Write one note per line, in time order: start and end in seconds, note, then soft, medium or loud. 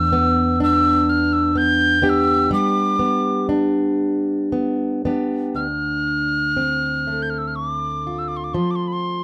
0.00 2.52 E2 medium
0.00 0.60 D4 medium
0.00 0.59 E6 loud
0.12 1.55 B3 medium
0.60 2.02 D4 medium
0.60 1.11 E6 loud
1.09 1.34 F6 medium
1.33 1.59 E6 medium
1.55 2.02 B3 medium
1.55 2.05 G6 loud
2.02 2.99 B3 medium
2.02 3.49 D4 medium
2.02 5.06 G4 medium
2.02 2.10 G6 medium
2.09 2.52 E6 medium
2.51 5.55 G3 medium
2.51 3.47 D6 medium
2.99 4.51 B3 medium
3.49 5.05 D4 medium
4.52 5.04 B3 soft
5.05 5.66 B3 soft
5.05 6.60 D4 soft
5.05 5.66 G4 soft
5.54 8.54 D2 medium
5.54 7.24 F6 medium
6.57 9.24 C4 soft
7.07 9.24 A3 soft
7.22 7.31 G6 medium
7.30 7.40 F6 medium
7.38 7.49 E6 medium
7.47 7.57 F6 medium
7.56 7.68 C#6 medium
7.68 8.20 D6 medium
8.07 9.24 F4 soft
8.19 8.30 E6 medium
8.28 8.38 D6 medium
8.37 8.46 C6 medium
8.44 8.55 D6 medium
8.54 9.24 F3 medium
8.54 8.72 C6 medium
8.71 8.77 D6 medium
8.76 8.89 C6 medium
8.88 8.94 B5 medium
8.93 9.24 C6 medium